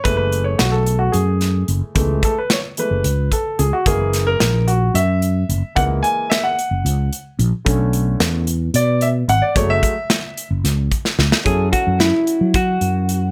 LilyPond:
<<
  \new Staff \with { instrumentName = "Grand piano" } { \time 7/8 \key fis \minor \tempo 4 = 111 b'16 b'8 cis''16 fis'16 a'8 fis'16 gis'4 r8 | r8 a'16 b'16 cis''8 b'4 a'8 gis'16 fis'16 | gis'8. ais'8. fis'8 e''4. | fis''8 gis''8 e''16 fis''4. r8. |
r2 d''8 e''8 fis''16 d''16 | cis''16 e''4. r4. r16 | <fis cis' e' a'>2.~ <fis cis' e' a'>8 | }
  \new Staff \with { instrumentName = "Grand piano" } { \clef bass \time 7/8 \key fis \minor <e gis a>2.~ <e gis a>8 | <e gis a>8 r4 <e gis a>8 r4. | <e gis ais>4. r2 | <e gis ais>4. r2 |
<d a cis'>4. r2 | <fis gis a>8 r2. | r2. r8 | }
  \new Staff \with { instrumentName = "Hollow-body jazz guitar" } { \time 7/8 \key fis \minor r2. r8 | r2. r8 | r2. r8 | r2. r8 |
r2. r8 | r2. r8 | gis'8 fis'8 e'4 fis'4. | }
  \new Staff \with { instrumentName = "Fretless electric bass" } { \clef bass \time 7/8 \key fis \minor fis,,4 b,,4 fis,4 fis,,16 r16 | cis,8 r4 r16 fis,,16 cis,8 r8 cis,16 r16 | fis,,4 ais,,4 fis,4 fis,,16 r16 | cis,8 r4 r16 fis,,16 cis,8 r8 ais,,16 r16 |
b,,4 e,4 b,4 gis,,16 r16 | fis,,8 r4 r16 fis,,16 cis,8 r8 cis,16 r16 | fis,8 r16 fis,8 r8 fis8. fis,4 | }
  \new DrumStaff \with { instrumentName = "Drums" } \drummode { \time 7/8 <hh bd>8 hh8 <hh sn>8 hh8 hh8 <hh sn>8 hh8 | <hh bd>8 <hh bd>8 <hh sn>8 hh8 hh8 <hh bd>8 hh8 | <hh bd>8 <hh sn>8 <hh sn>8 hh8 hh8 hh8 hh8 | <hh bd>8 hh8 <hh sn>8 hh8 hh8 hh8 hh8 |
<hh bd>8 hh8 <hh sn>8 hh8 hh8 hh8 hh8 | <hh bd>8 <hh bd>8 <hh sn>8 hh8 <hh sn>8 <hh bd>16 sn16 sn16 sn16 | <hh bd>8 <hh bd>8 <hh sn>8 hh8 <hh bd>8 hh8 hh8 | }
>>